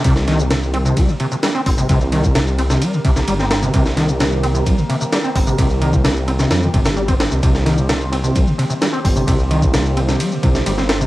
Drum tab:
RD |x-x-x-x-x-x-x---|x-x-x-x-x-x-x-x-|x-x-x-x-x-x-x---|x-x-x-x-x-xx-xx-|
HH |--------------o-|----------------|--------------o-|----------------|
SH |xx-xxx-xxx-xxx-x|xx-xxx-xxx-xxx-x|xx-xxx-xxx-xxx-x|xx-xxx-xxx-xxx-x|
SD |-oo-o-------o---|----o--o---o-oo-|-oo-o-------o---|----o--oo--o--o-|
BD |o-------o-----o-|o--o------o-----|o-------o-----o-|o--o------o--o--|

RD |x-x-x-x-x-x-x---|x-x-x-x-x-x-x-x-|
HH |--------------o-|----------------|
SH |xx-xxx-xxx-xxx-x|xx-xxx-xxx-xxx-x|
SD |-oo-o-------o---|----o--o---o-oo-|
BD |o-------o-----o-|o--o------o-----|